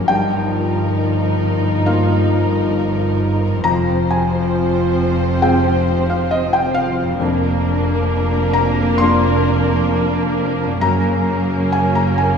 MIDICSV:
0, 0, Header, 1, 9, 480
1, 0, Start_track
1, 0, Tempo, 888889
1, 47, Time_signature, 4, 2, 24, 8
1, 3888, Tempo, 906344
1, 6630, End_track
2, 0, Start_track
2, 0, Title_t, "Felt piano"
2, 0, Program_c, 0, 0
2, 0, Control_c, 0, 64, 127
2, 0, Note_on_c, 0, 58, 44
2, 0, Note_on_c, 0, 61, 44
2, 0, Note_on_c, 0, 70, 46
2, 0, Note_on_c, 0, 80, 66
2, 0, Note_on_c, 0, 82, 78
2, 43, Note_on_c, 0, 79, 82
2, 50, Note_on_c, 0, 43, 54
2, 56, Control_c, 0, 64, 0
2, 59, Note_off_c, 0, 58, 0
2, 60, Note_off_c, 0, 61, 0
2, 60, Note_off_c, 0, 70, 0
2, 61, Note_off_c, 0, 82, 0
2, 62, Note_off_c, 0, 80, 0
2, 139, Control_c, 0, 64, 127
2, 980, Note_off_c, 0, 79, 0
2, 1005, Note_on_c, 0, 63, 47
2, 1006, Note_on_c, 0, 58, 45
2, 1006, Note_on_c, 0, 77, 76
2, 1008, Note_on_c, 0, 65, 54
2, 1947, Note_off_c, 0, 43, 0
2, 1947, Note_off_c, 0, 58, 0
2, 1947, Note_off_c, 0, 63, 0
2, 1947, Note_off_c, 0, 77, 0
2, 1948, Note_off_c, 0, 65, 0
2, 1965, Note_on_c, 0, 82, 93
2, 1968, Note_on_c, 0, 41, 57
2, 1978, Control_c, 0, 64, 0
2, 2072, Control_c, 0, 64, 127
2, 2190, Note_off_c, 0, 82, 0
2, 2217, Note_on_c, 0, 80, 72
2, 2912, Note_off_c, 0, 80, 0
2, 2924, Note_on_c, 0, 56, 51
2, 2924, Note_on_c, 0, 60, 52
2, 2928, Note_on_c, 0, 65, 54
2, 2928, Note_on_c, 0, 79, 80
2, 3265, Note_off_c, 0, 79, 0
2, 3293, Note_on_c, 0, 77, 72
2, 3401, Note_off_c, 0, 77, 0
2, 3407, Note_on_c, 0, 75, 85
2, 3518, Note_off_c, 0, 75, 0
2, 3527, Note_on_c, 0, 79, 77
2, 3639, Note_off_c, 0, 79, 0
2, 3642, Note_on_c, 0, 77, 86
2, 3865, Note_off_c, 0, 56, 0
2, 3865, Note_off_c, 0, 60, 0
2, 3867, Note_off_c, 0, 41, 0
2, 3867, Note_off_c, 0, 65, 0
2, 3888, Note_on_c, 0, 41, 59
2, 3897, Control_c, 0, 64, 0
2, 4000, Control_c, 0, 64, 127
2, 4578, Note_off_c, 0, 77, 0
2, 4595, Note_on_c, 0, 82, 88
2, 4820, Note_off_c, 0, 82, 0
2, 4830, Note_on_c, 0, 84, 91
2, 4845, Note_on_c, 0, 58, 55
2, 4848, Note_on_c, 0, 62, 48
2, 4851, Note_on_c, 0, 65, 56
2, 5777, Note_off_c, 0, 84, 0
2, 5782, Note_off_c, 0, 41, 0
2, 5785, Note_off_c, 0, 58, 0
2, 5786, Note_off_c, 0, 62, 0
2, 5787, Note_off_c, 0, 65, 0
2, 5802, Note_on_c, 0, 82, 89
2, 5805, Note_on_c, 0, 42, 60
2, 5812, Control_c, 0, 64, 0
2, 5885, Control_c, 0, 64, 127
2, 6262, Note_off_c, 0, 82, 0
2, 6284, Note_on_c, 0, 80, 83
2, 6396, Note_off_c, 0, 80, 0
2, 6405, Note_on_c, 0, 82, 74
2, 6518, Note_off_c, 0, 82, 0
2, 6524, Note_on_c, 0, 80, 73
2, 6630, Note_off_c, 0, 42, 0
2, 6630, Note_off_c, 0, 80, 0
2, 6630, End_track
3, 0, Start_track
3, 0, Title_t, "Violin section"
3, 0, Program_c, 1, 48
3, 55, Note_on_c, 1, 70, 60
3, 1950, Note_off_c, 1, 70, 0
3, 1973, Note_on_c, 1, 72, 66
3, 3891, Note_off_c, 1, 72, 0
3, 3891, Note_on_c, 1, 70, 68
3, 5792, Note_off_c, 1, 70, 0
3, 5799, Note_on_c, 1, 70, 61
3, 6630, Note_off_c, 1, 70, 0
3, 6630, End_track
4, 0, Start_track
4, 0, Title_t, "Violin section"
4, 0, Program_c, 2, 48
4, 48, Note_on_c, 2, 63, 63
4, 1968, Note_off_c, 2, 63, 0
4, 1969, Note_on_c, 2, 60, 68
4, 3868, Note_off_c, 2, 60, 0
4, 3887, Note_on_c, 2, 62, 69
4, 5781, Note_off_c, 2, 62, 0
4, 5806, Note_on_c, 2, 61, 68
4, 6630, Note_off_c, 2, 61, 0
4, 6630, End_track
5, 0, Start_track
5, 0, Title_t, "French horn section"
5, 0, Program_c, 3, 60
5, 56, Note_on_c, 3, 63, 60
5, 58, Note_on_c, 3, 53, 56
5, 1881, Note_off_c, 3, 53, 0
5, 1881, Note_off_c, 3, 63, 0
5, 1973, Note_on_c, 3, 53, 61
5, 1973, Note_on_c, 3, 60, 61
5, 3870, Note_off_c, 3, 53, 0
5, 3888, Note_on_c, 3, 58, 65
5, 3891, Note_off_c, 3, 60, 0
5, 3891, Note_on_c, 3, 62, 69
5, 5712, Note_off_c, 3, 58, 0
5, 5712, Note_off_c, 3, 62, 0
5, 5802, Note_on_c, 3, 58, 61
5, 5805, Note_on_c, 3, 61, 66
5, 6630, Note_off_c, 3, 58, 0
5, 6630, Note_off_c, 3, 61, 0
5, 6630, End_track
6, 0, Start_track
6, 0, Title_t, "Harp"
6, 0, Program_c, 4, 46
6, 0, Note_on_c, 4, 43, 54
6, 0, Note_on_c, 4, 53, 46
6, 0, Note_on_c, 4, 58, 41
6, 4, Note_on_c, 4, 63, 44
6, 27, Note_on_c, 4, 70, 44
6, 164, Note_off_c, 4, 58, 0
6, 1875, Note_on_c, 4, 41, 58
6, 1892, Note_off_c, 4, 53, 0
6, 1899, Note_on_c, 4, 53, 49
6, 1923, Note_on_c, 4, 60, 49
6, 1940, Note_off_c, 4, 43, 0
6, 1949, Note_on_c, 4, 72, 47
6, 1965, Note_off_c, 4, 63, 0
6, 1977, Note_off_c, 4, 70, 0
6, 3787, Note_off_c, 4, 41, 0
6, 3794, Note_on_c, 4, 41, 57
6, 3820, Note_on_c, 4, 58, 49
6, 3842, Note_on_c, 4, 62, 51
6, 3867, Note_on_c, 4, 70, 51
6, 4002, Note_off_c, 4, 53, 0
6, 4026, Note_off_c, 4, 60, 0
6, 4051, Note_off_c, 4, 72, 0
6, 5706, Note_on_c, 4, 42, 60
6, 5724, Note_off_c, 4, 58, 0
6, 5730, Note_on_c, 4, 58, 52
6, 5755, Note_on_c, 4, 61, 48
6, 5773, Note_off_c, 4, 70, 0
6, 5776, Note_off_c, 4, 41, 0
6, 5779, Note_on_c, 4, 70, 49
6, 5799, Note_off_c, 4, 62, 0
6, 6630, Note_off_c, 4, 42, 0
6, 6630, Note_off_c, 4, 58, 0
6, 6630, Note_off_c, 4, 61, 0
6, 6630, Note_off_c, 4, 70, 0
6, 6630, End_track
7, 0, Start_track
7, 0, Title_t, "Viola section"
7, 0, Program_c, 5, 48
7, 56, Note_on_c, 5, 53, 61
7, 1951, Note_off_c, 5, 53, 0
7, 1975, Note_on_c, 5, 53, 68
7, 3871, Note_off_c, 5, 53, 0
7, 3888, Note_on_c, 5, 58, 74
7, 5782, Note_off_c, 5, 58, 0
7, 5805, Note_on_c, 5, 58, 73
7, 6630, Note_off_c, 5, 58, 0
7, 6630, End_track
8, 0, Start_track
8, 0, Title_t, "Cello section"
8, 0, Program_c, 6, 48
8, 44, Note_on_c, 6, 43, 60
8, 1945, Note_off_c, 6, 43, 0
8, 1970, Note_on_c, 6, 41, 65
8, 3881, Note_off_c, 6, 41, 0
8, 3887, Note_on_c, 6, 41, 69
8, 5781, Note_off_c, 6, 41, 0
8, 5802, Note_on_c, 6, 42, 65
8, 6630, Note_off_c, 6, 42, 0
8, 6630, End_track
9, 0, Start_track
9, 0, Title_t, "Double bass section"
9, 0, Program_c, 7, 48
9, 49, Note_on_c, 7, 31, 60
9, 1947, Note_off_c, 7, 31, 0
9, 1973, Note_on_c, 7, 29, 61
9, 3886, Note_off_c, 7, 29, 0
9, 3892, Note_on_c, 7, 29, 67
9, 5784, Note_off_c, 7, 29, 0
9, 5801, Note_on_c, 7, 30, 67
9, 6630, Note_off_c, 7, 30, 0
9, 6630, End_track
0, 0, End_of_file